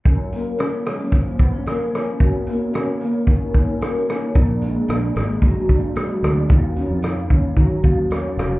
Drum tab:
HH |xxxxxxxx|xxxxxxxx|xxxxxxxx|xxxxxxxx|
SD |--rr--rr|--r---rr|--rr--rr|--r---rr|
BD |o---oo--|o---oo--|o---oo--|o--ooo--|